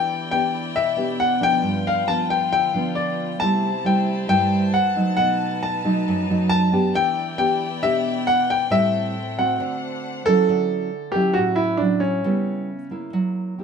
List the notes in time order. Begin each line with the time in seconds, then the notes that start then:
Already playing: E3 B3 D4 E4 G4 D5 G5
0.31 B3 D4 G4 G5
0.75 B2 E5
0.96 B3 D4 G4
1.20 F#5
1.40 F3 B3 D4 G5
1.62 G2 F4 B4
1.87 F5
2.08 F3 B3 D4 A5
2.30 G5
2.52 D3 G5
2.74 F3 B3 D4
2.95 D5
3.38 C3 G3 A3 E4 C5 A5
3.42 E4
3.84 G3 A3 E4 G5
4.28 G2 G3 A3 E4 G5
4.74 F#5
4.95 F#3 A3 D#4
5.16 B2 D#4 B4 F#5
5.63 A5
5.84 F#3 A3 D#4
6.08 F#2
6.30 F#3 A3 D#4
6.49 A5
6.73 B3 D4 G4
6.94 E3 E4 D5 G5
7.38 B3 D4 G4 G5
7.82 B2 B3 D4 G4 E5
8.27 F#5
8.50 G5
8.70 A2 G3 C4 E4 A4 E5
9.38 A3 C4 F#4 F#5
9.59 D3 D4 C5 F#5
10.26 F#3 C#4 E4 A4
10.49 D3
11.12 F#3 C#4 G4
11.16 E4
11.33 A2 F#4
11.56 E4
11.77 F#3 D4
11.81 C#4 E4
12.00 C#4
12.24 C#3 G3 B3 E4
12.91 A#3 E4
13.13 F#3
13.58 A#3 E4 G4